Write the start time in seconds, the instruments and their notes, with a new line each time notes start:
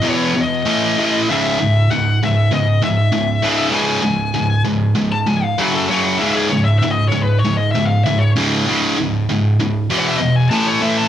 0.03 distorted electric guitar E2 B2 E3
0.09 lead electric guitar C#5
0.36 distorted electric guitar E2 B2
0.41 lead electric guitar D#5
0.65 distorted electric guitar A2 E3 A3
0.98 distorted electric guitar A2 E3 A3
1.29 distorted electric guitar C#2 G#2 C#3, lead electric guitar E5
1.60 distorted electric guitar C#2 G#2
1.90 distorted electric guitar C#2 G#2, lead electric guitar F#5
2.23 distorted electric guitar C#2 G#2, lead electric guitar E5
2.52 distorted electric guitar C#2 G#2, lead electric guitar D#5
2.83 distorted electric guitar C#2 G#2, lead electric guitar E5
3.12 distorted electric guitar C#2 G#2
3.42 distorted electric guitar C#2 G#2 C#3
3.71 distorted electric guitar C#2 G#2 C#3, lead electric guitar G#5
4.02 distorted electric guitar C#2 G#2
4.34 distorted electric guitar C#2 G#2
4.65 distorted electric guitar C#2 G#2
4.95 distorted electric guitar C#2 G#2
5.12 lead electric guitar A5
5.27 distorted electric guitar C#2 G#2, lead electric guitar G#5
5.44 lead electric guitar F5
5.58 distorted electric guitar F#2 C#3 F#3, lead electric guitar F#5
5.74 lead electric guitar A4
5.89 distorted electric guitar F#2 C#3 F#3, lead electric guitar C#5
6.03 lead electric guitar F#5
6.18 distorted electric guitar C#2 G#2 C#3, lead electric guitar E5
6.35 lead electric guitar G#4
6.49 distorted electric guitar C#2 G#2, lead electric guitar C#5
6.65 lead electric guitar E5
6.79 distorted electric guitar C#2, lead electric guitar E5
6.84 distorted electric guitar G#2
6.91 lead electric guitar D#5
7.08 distorted electric guitar C#2, lead electric guitar C#5
7.13 distorted electric guitar G#2
7.23 lead electric guitar B4
7.39 lead electric guitar C#5
7.44 distorted electric guitar C#2 G#2
7.57 lead electric guitar D#5
7.72 distorted electric guitar C#2 G#2, lead electric guitar E5
7.86 lead electric guitar F5
8.04 distorted electric guitar C#2 G#2, lead electric guitar E5
8.19 lead electric guitar C#5
8.36 distorted electric guitar C#2 G#2 C#3
8.67 distorted electric guitar C#2 G#2 C#3
8.97 distorted electric guitar C#2 G#2
9.29 distorted electric guitar C#2 G#2
9.60 distorted electric guitar C#2 G#2
9.90 distorted electric guitar E2 B2 E3
9.99 lead electric guitar F#5
10.08 lead electric guitar E5
10.17 distorted electric guitar E2 B2, lead electric guitar D#5
10.36 lead electric guitar G#5
10.50 distorted electric guitar A2 E3 A3, lead electric guitar A5
10.66 lead electric guitar C#5
10.81 distorted electric guitar A2 E3 A3, lead electric guitar E5
10.98 lead electric guitar A5